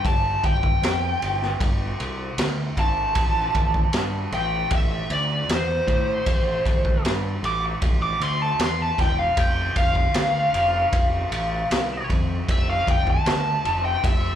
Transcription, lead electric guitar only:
0.06 0.43 A5 loud
0.45 1.96 G5 loud
2.79 4.30 A5 loud
4.34 4.71 G5 loud
4.75 5.11 E5 medium
5.12 5.49 D5 medium
5.52 7.02 C5 loud
7.45 7.63 D6 loud
8.02 8.23 D6 medium
8.23 8.41 C6 loud
8.42 8.60 A5 medium
8.62 8.80 C6 medium
8.82 9.00 A5 loud
9.01 9.19 G5 medium
9.19 9.38 F5 medium
9.38 9.76 G5 medium
9.77 12.06 F5 loud
12.51 12.69 E5 loud
12.70 12.88 F5 medium
12.91 13.08 G5 loud
13.10 13.84 A5 loud
13.85 14.05 G5 medium
14.05 14.35 E5 loud

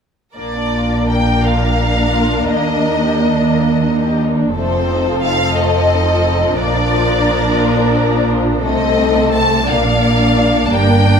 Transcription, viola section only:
0.37 4.53 A#3 soft
0.37 4.53 D4 soft
4.58 8.61 F3 soft
4.58 6.56 C4 soft
6.60 8.64 D4 soft
8.64 9.68 A3 soft
8.64 9.68 C4 soft
9.69 11.20 A#3 medium
9.69 11.20 D4 medium

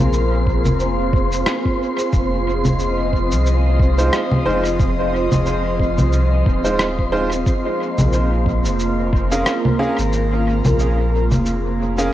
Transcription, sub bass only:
0.00 0.66 A#1 medium
0.65 1.43 F1 loud
2.13 3.33 F1 loud
3.31 4.10 C2 loud
4.46 5.28 F1 medium
5.32 6.00 F1 medium
5.99 6.43 C2 loud
6.46 7.43 D#1 loud
7.98 8.67 A#1 medium
8.65 9.43 F1 loud
9.99 10.62 G#1 medium
10.65 11.33 A#1 medium
11.31 12.10 F1 medium

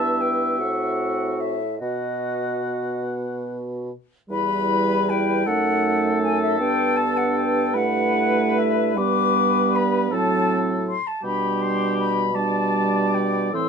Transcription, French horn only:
0.00 0.63 B3 medium
0.62 1.64 C4 medium
1.81 3.92 B3 soft
4.29 5.49 G3 medium
5.47 6.61 A3 medium
6.59 7.75 B3 medium
7.74 8.97 A3 medium
8.95 10.11 G3 medium
10.11 10.95 F#3 medium
11.23 12.30 G3 medium
12.34 13.51 G3 medium
13.53 13.69 E3 medium

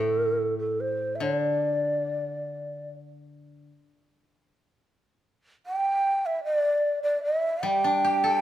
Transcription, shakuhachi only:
0.00 0.58 A4 medium
0.59 0.82 A4 medium
0.80 1.17 C5 medium
1.15 1.24 E5 soft
1.22 1.36 C#5 medium
1.36 2.90 D5 medium
5.66 6.27 G5 medium
6.26 6.44 E5 medium
6.44 7.00 D5 medium
7.03 7.22 D5 medium
7.24 7.65 E5 medium
7.64 8.41 G5 medium

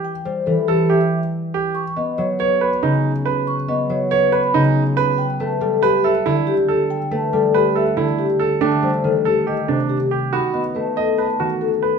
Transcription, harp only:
0.00 0.46 E3 soft
0.00 0.24 G3 soft
0.25 1.77 G3 medium
0.47 1.77 E3 soft
1.96 3.67 B3 medium
2.18 3.89 F#3 medium
2.83 4.53 C#3 medium
3.68 7.58 B3 medium
3.90 5.20 F#3 medium
4.54 5.20 C#3 medium
5.40 7.10 A3 medium
5.61 7.32 G3 medium
6.26 7.95 D3 medium
7.11 8.60 A3 medium
7.33 8.81 G3 medium
7.97 8.63 D3 medium
8.61 10.74 A3 medium
8.83 10.34 G3 medium
9.04 10.34 D#3 soft
9.68 10.34 C3 soft
10.33 11.99 D#4 medium
10.54 11.99 B3 soft
10.76 11.99 A3 soft
11.40 11.99 D#3 soft

